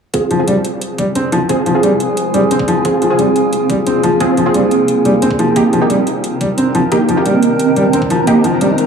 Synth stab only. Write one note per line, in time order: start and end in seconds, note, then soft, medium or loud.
0.14 0.23 C4 medium
0.14 0.23 F4 medium
0.14 0.23 G#4 medium
0.39 0.48 C4 medium
0.39 0.48 F4 medium
0.39 0.48 G#4 medium
1.49 1.59 C4 medium
1.49 1.59 F4 medium
1.49 1.59 G#4 loud
1.75 2.83 C4 medium
1.75 2.83 F4 medium
1.75 2.83 G#4 medium
2.85 2.94 C4 medium
2.85 2.94 F4 medium
2.85 2.94 G#4 medium
3.10 3.20 C4 medium
3.10 3.20 F4 medium
3.10 3.20 G#4 medium
4.20 4.30 C4 medium
4.20 4.30 F4 medium
4.20 4.30 G#4 loud
4.46 5.54 C4 medium
4.46 5.54 F4 medium
4.46 5.54 G#4 medium
5.56 5.65 A#3 medium
5.56 5.65 D#4 medium
5.56 5.65 G4 medium
5.81 5.91 A#3 medium
5.81 5.91 D#4 medium
5.81 5.91 G4 medium
6.92 7.01 A#3 medium
6.92 7.01 D#4 medium
6.92 7.01 G4 loud
7.17 8.25 A#3 medium
7.17 8.25 D#4 medium
7.17 8.25 G4 medium
8.27 8.37 A#3 medium
8.27 8.37 D#4 medium
8.27 8.37 G4 medium